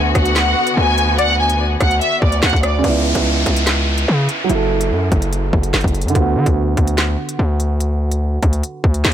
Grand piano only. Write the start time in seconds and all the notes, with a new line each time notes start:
Already playing: D3 B3 F#4
2.79 C#3
2.84 B3
2.89 E4
4.44 F#3
4.50 E4
4.55 A4
6.10 D3
6.15 B3
6.21 F#4